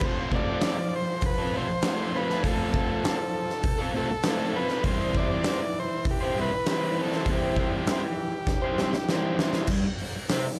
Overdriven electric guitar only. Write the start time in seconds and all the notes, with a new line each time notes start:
0.02 F3 A3 C4 F4 A4
0.32 A3 C4 F4 A4
0.47 C4 F4 A4
0.64 F3 A3 C4 F4 A4
0.78 muted overdriven electric guitar stroke
1.39 C4 F4 A4
1.54 A3 C4 F4 A4
1.70 muted overdriven electric guitar stroke
1.84 F3 A3 C4 F4 A4
2.14 A3 C4 F4
2.18 A4
2.28 C4 F4 A4
2.44 F3 A3 C4 F4 A4
2.73 A3 C4 F4 A4
2.88 C4 F4 A4
3.03 F3 A3 C4 F4 A4
3.18 muted overdriven electric guitar stroke
3.78 C4 F4 A4
3.94 A3 C4 F4 A4
4.10 muted overdriven electric guitar stroke
4.26 F3 A3 C4 F4 A4
4.54 A3 C4 F4 A4
4.70 C4 F4 A4
4.84 E3 G3 C4 E4 C5
5.16 G3 C4 E4 C5
5.29 C4 E4 C5
5.45 E3 G3 C4 E4 C5
5.62 muted overdriven electric guitar stroke
6.21 C4 E4 C5
6.36 G3 C4 E4 C5
6.52 muted overdriven electric guitar stroke
6.67 E3 G3 C4 E4 C5
6.98 G3 C4 E4 C5
7.13 C4 E4 C5
7.28 E3 G3 C4 E4 C5
7.56 G3 C4 E4 C5
7.73 C4 E4 C5
7.88 E3 G3 C4 E4 C5
8.03 muted overdriven electric guitar stroke
8.62 C4 E4 C5
8.79 G3 C4 E4 C5
8.94 muted overdriven electric guitar stroke
9.09 E3 G3 C4 E4 C5
9.39 G3 C4 E4 C5
9.53 E4 C5
9.58 C4
9.69 G2 G3
9.86 muted overdriven electric guitar stroke
10.02 muted overdriven electric guitar stroke
10.16 muted overdriven electric guitar stroke
10.31 C3 C4
10.46 muted overdriven electric guitar stroke